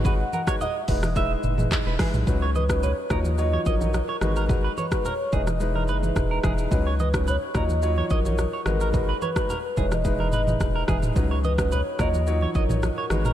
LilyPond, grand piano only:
\new Staff \with { instrumentName = "Grand piano" } { \time 4/4 \key ees \phrygian \tempo 4 = 108 <aes ees' ges' ces''>16 r8 <aes ees' ges' ces''>16 r8 <gis dis' e' b'>16 r16 <gis dis' e' b'>8. <gis dis' e' b'>8. <gis dis' e' b'>8 | <ges des' ees' ces''>16 r8 <ges des' ees' ces''>16 r8 <ges ees' f' des''>16 r16 <ges ees' f' des''>8. <ges ees' f' des''>16 r8 <aes ees' ges' ces''>8 | <aes ees' ges' ces''>16 r8 <aes ees' ges' ces''>16 r8 <gis dis' e' b'>16 r16 <gis dis' e' b'>8. <gis dis' e' b'>8. <gis dis' e' b'>8 | <ges des' ees' ces''>16 r8 <ges des' ees' ces''>16 r8 <ges ees' f' des''>16 r16 <ges ees' f' des''>8. <ges ees' f' des''>16 r8 <aes ees' ges' ces''>8 |
<aes ees' ges' ces''>16 r8 <aes ees' ges' ces''>16 r8 <gis dis' e' b'>16 r16 <gis dis' e' b'>8. <gis dis' e' b'>8. <gis dis' e' b'>8 | <ges des' ees' ces''>16 r8 <ges des' ees' ces''>16 r8 <ges ees' f' des''>16 r16 <ges ees' f' des''>8. <ges ees' f' des''>16 r8 <aes ees' ges' ces''>8 | }